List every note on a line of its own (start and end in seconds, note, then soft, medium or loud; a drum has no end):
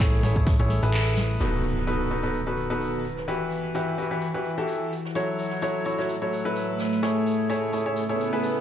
0.00 0.21 A1 loud
0.00 0.21 A3 medium
0.00 0.21 E4 medium
0.00 0.21 G#4 medium
0.00 0.21 A4 medium
0.00 0.21 C#5 loud
0.00 clap loud
0.00 shaker medium
0.12 closed hi-hat soft
0.12 tambourine soft
0.23 0.33 A1 medium
0.23 0.34 A3 medium
0.23 0.34 E4 medium
0.23 0.34 G#4 medium
0.23 0.34 A4 medium
0.23 0.34 C#5 medium
0.23 open hi-hat loud
0.23 high conga medium
0.23 shaker medium
0.36 0.57 A1 loud
0.36 0.51 A3 medium
0.36 0.51 E4 medium
0.36 0.51 G#4 medium
0.36 0.51 A4 medium
0.36 0.51 C#5 medium
0.36 kick medium
0.36 closed hi-hat soft
0.36 tambourine medium
0.47 kick loud
0.47 snare loud
0.47 closed hi-hat loud
0.47 tambourine medium
0.47 shaker medium
0.59 0.80 A1 medium
0.59 0.79 A3 medium
0.59 0.79 E4 medium
0.59 0.79 G#4 medium
0.59 0.79 A4 medium
0.59 0.79 C#5 medium
0.59 closed hi-hat soft
0.59 tambourine soft
0.70 open hi-hat loud
0.70 high conga medium
0.70 shaker medium
0.82 1.38 A1 loud
0.82 1.38 A3 medium
0.82 1.38 E4 medium
0.82 1.38 G#4 medium
0.82 1.38 A4 medium
0.82 1.38 B4 loud
0.82 closed hi-hat soft
0.82 tambourine medium
0.93 snare loud
0.93 clap loud
0.93 closed hi-hat loud
0.93 tambourine medium
0.93 shaker medium
1.06 closed hi-hat soft
1.06 tambourine soft
1.17 snare loud
1.17 open hi-hat loud
1.17 high conga medium
1.17 shaker medium
1.30 closed hi-hat soft
1.30 tambourine medium
1.40 1.85 B2 medium
1.40 1.85 D#4 medium
1.40 3.04 D#4 medium
1.40 1.85 F#4 medium
1.40 1.85 A4 medium
1.40 1.85 B4 loud
1.40 impact medium
1.40 shaker medium
1.52 3.80 B4 medium
1.63 shaker medium
1.77 snare soft
1.87 2.08 B2 medium
1.87 2.08 D#4 medium
1.87 2.08 F#4 medium
1.87 2.08 A4 medium
1.87 2.08 B4 medium
1.87 shaker medium
2.06 3.80 A5 medium
2.11 2.21 B2 medium
2.11 2.22 D#4 medium
2.11 2.21 F#4 medium
2.11 2.22 A4 medium
2.11 2.22 B4 medium
2.11 shaker medium
2.23 2.38 B2 medium
2.23 2.38 D#4 medium
2.23 2.38 F#4 medium
2.23 2.38 A4 medium
2.23 2.38 B4 medium
2.23 snare soft
2.33 shaker medium
2.47 2.66 B2 medium
2.47 2.66 D#4 medium
2.47 2.66 F#4 medium
2.47 2.66 A4 medium
2.47 2.66 B4 medium
2.56 shaker medium
2.70 3.03 B2 medium
2.70 3.03 D#4 medium
2.70 3.03 F#4 medium
2.70 3.03 A4 medium
2.70 3.03 B4 medium
2.81 shaker medium
3.04 7.78 E4 medium
3.04 shaker medium
3.13 4.92 G3 medium
3.13 snare soft
3.28 3.72 E3 medium
3.28 3.72 E4 medium
3.28 3.72 F#4 medium
3.28 3.72 G4 medium
3.28 3.72 B4 loud
3.28 shaker medium
3.51 shaker medium
3.75 3.96 E3 medium
3.75 3.96 E4 medium
3.75 3.96 F#4 medium
3.75 3.96 G4 medium
3.75 3.96 B4 medium
3.75 7.78 F#5 medium
3.75 shaker medium
3.98 4.09 E3 medium
3.98 4.09 E4 medium
3.98 4.09 F#4 medium
3.98 4.09 G4 medium
3.98 4.09 B4 medium
3.98 shaker medium
4.11 4.26 E3 medium
4.11 4.26 E4 medium
4.11 4.26 F#4 medium
4.11 4.26 G4 medium
4.11 4.26 B4 medium
4.22 shaker medium
4.34 4.54 E3 medium
4.34 4.54 E4 medium
4.34 4.54 F#4 medium
4.34 4.54 G4 medium
4.34 4.54 B4 medium
4.44 shaker medium
4.58 4.91 E3 medium
4.58 4.91 E4 medium
4.58 4.91 F#4 medium
4.58 4.91 G4 medium
4.58 4.91 A4 loud
4.68 shaker medium
4.92 shaker medium
5.05 8.61 A3 medium
5.05 snare soft
5.15 5.60 F#3 medium
5.15 5.60 E4 medium
5.15 5.60 F#4 medium
5.15 5.60 A4 medium
5.15 5.60 C#5 loud
5.15 shaker medium
5.39 shaker medium
5.51 snare soft
5.62 5.83 F#3 medium
5.62 5.83 E4 medium
5.62 5.83 F#4 medium
5.62 5.83 A4 medium
5.62 5.83 C#5 loud
5.62 shaker medium
5.85 5.97 F#3 medium
5.85 5.97 E4 medium
5.85 5.96 F#4 medium
5.85 5.97 A4 medium
5.85 5.97 C#5 medium
5.85 shaker medium
5.98 6.13 F#3 medium
5.98 6.13 E4 medium
5.98 6.13 F#4 medium
5.98 6.13 A4 medium
5.98 6.13 C#5 medium
5.98 snare soft
6.09 shaker medium
6.22 6.41 F#3 medium
6.22 6.41 E4 medium
6.22 6.41 F#4 medium
6.22 6.41 A4 medium
6.22 6.41 C#5 medium
6.33 shaker medium
6.45 7.00 F#3 medium
6.45 7.00 E4 medium
6.45 7.00 F#4 medium
6.45 7.00 A4 medium
6.45 7.00 B4 loud
6.45 closed hi-hat soft
6.56 shaker medium
6.79 snare medium
6.79 shaker medium
6.92 snare medium
7.03 7.47 A3 medium
7.03 8.61 C#4 medium
7.03 7.47 E4 medium
7.03 7.47 G#4 medium
7.03 7.47 A4 medium
7.03 7.47 C#5 loud
7.03 snare medium
7.03 shaker medium
7.27 shaker medium
7.41 8.61 G#5 medium
7.50 7.71 A3 medium
7.50 7.71 E4 medium
7.50 7.71 G#4 medium
7.50 7.71 A4 medium
7.50 7.71 C#5 loud
7.50 shaker medium
7.73 7.84 A3 medium
7.73 7.84 E4 medium
7.73 7.84 G#4 medium
7.73 7.84 A4 medium
7.73 7.84 C#5 medium
7.73 shaker medium
7.86 8.01 A3 medium
7.86 8.01 E4 medium
7.86 8.01 G#4 medium
7.86 8.01 A4 medium
7.86 8.01 C#5 medium
7.96 swell medium
7.96 shaker medium
8.09 8.29 A3 medium
8.09 8.29 E4 medium
8.09 8.29 G#4 medium
8.09 8.29 A4 medium
8.09 8.29 C#5 medium
8.21 shaker medium
8.33 8.61 A3 medium
8.33 8.61 E4 medium
8.33 8.61 G#4 medium
8.33 8.61 A4 medium
8.33 8.61 B4 loud
8.43 shaker medium